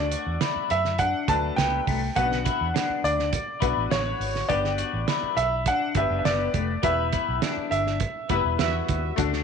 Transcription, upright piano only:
0.00 0.75 A3 medium
0.00 0.75 D4 medium
0.00 0.75 F#4 medium
0.00 0.76 A4 medium
1.28 1.98 F#3 medium
1.28 1.98 A3 medium
1.28 1.98 D4 medium
1.28 1.99 B4 medium
2.17 3.09 B3 medium
2.17 2.23 C#4 soft
2.17 3.10 F#4 medium
2.17 3.10 B4 medium
2.23 3.12 D4 medium
3.62 4.32 B3 medium
3.62 4.32 D4 medium
3.62 4.32 F#4 medium
3.62 4.32 B4 medium
4.48 5.42 B3 medium
4.48 5.42 D4 medium
4.48 5.43 G4 medium
4.48 5.43 B4 medium
5.96 6.65 B3 medium
5.96 6.66 D4 medium
5.96 6.66 G4 medium
5.96 6.66 B4 medium
6.83 7.76 B3 medium
6.83 7.76 E4 medium
6.83 7.77 G4 medium
6.83 7.77 B4 medium
8.30 9.00 G3 medium
8.30 9.00 B3 medium
8.30 9.00 E4 medium
8.30 9.00 B4 medium
9.16 9.44 A3 medium
9.16 9.44 D4 medium
9.16 9.44 F#4 medium
9.16 9.44 A4 medium

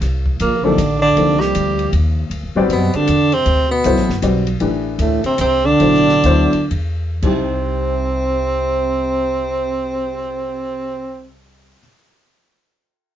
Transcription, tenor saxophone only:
0.41 0.66 A#3 medium
0.64 1.01 D4 medium
1.02 1.42 D4 medium
1.40 1.92 G4 medium
2.73 2.97 B3 medium
2.96 3.35 D4 loud
3.34 3.71 C4 loud
3.71 4.19 B3 medium
5.01 5.24 A3 medium
5.26 5.39 C4 medium
5.41 5.67 C4 medium
5.66 6.72 D4 loud
7.25 11.28 C4 medium

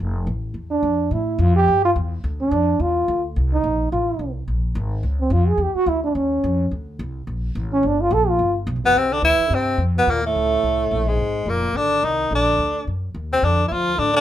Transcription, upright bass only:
0.00 0.26 F1 medium
0.27 0.53 A1 medium
0.54 0.82 E2 medium
0.83 1.10 F2 medium
1.11 1.38 A2 medium
1.39 1.66 F2 loud
1.96 2.23 E2 medium
2.24 2.51 D2 medium
2.51 2.79 F2 loud
2.79 3.07 E2 medium
3.08 3.35 D2 medium
3.36 3.63 C2 medium
3.64 3.91 A#1 medium
3.92 4.19 A1 medium
4.19 4.47 C2 medium
4.48 4.75 A#1 medium
4.75 5.03 G#1 loud
5.03 5.30 C#2 medium
5.30 5.57 F2 loud
5.58 5.74 E2 medium
5.75 muted upright bass stroke soft
5.86 6.14 D2 medium
6.15 6.42 D#2 medium
6.44 6.71 F2 loud
6.71 6.98 D2 medium
6.99 7.26 C2 loud
7.27 7.54 A#1 medium
7.55 7.82 A1 loud
7.83 8.10 G1 medium
8.11 8.38 A#1 loud
8.39 8.66 G1 medium
8.67 8.77 B1 loud
8.76 8.84 G1 medium
8.85 8.94 F1 medium
8.95 9.21 C2 medium
9.22 9.38 D2 medium
9.39 muted upright bass stroke soft
9.50 9.77 G2 medium
9.78 10.05 F2 medium
10.07 10.34 D#2 medium
10.35 10.62 C#2 medium
10.63 10.90 C2 medium
10.91 11.18 A#1 medium
11.19 11.45 G#1 medium
11.46 11.72 F1 medium
11.73 12.01 G#1 medium
12.03 12.30 C2 medium
12.31 12.58 A#1 medium
12.58 12.86 D2 medium
12.87 13.14 F#2 medium
13.15 13.42 D#2 medium
13.42 13.70 F2 medium
13.71 13.98 D2 medium
13.98 14.21 A2 medium

